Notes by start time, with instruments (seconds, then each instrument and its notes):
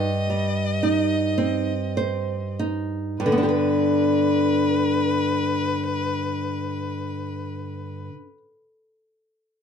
Already playing: nylon-string guitar G2, violin D#5
0.30 nylon-string guitar G3
0.83 nylon-string guitar D#4
1.38 nylon-string guitar C4
1.97 nylon-string guitar C5
2.59 nylon-string guitar D#4
3.19 nylon-string guitar G2, violin B4
3.26 nylon-string guitar D3
3.32 nylon-string guitar B3
3.38 nylon-string guitar D4
3.43 nylon-string guitar G4
3.49 nylon-string guitar B4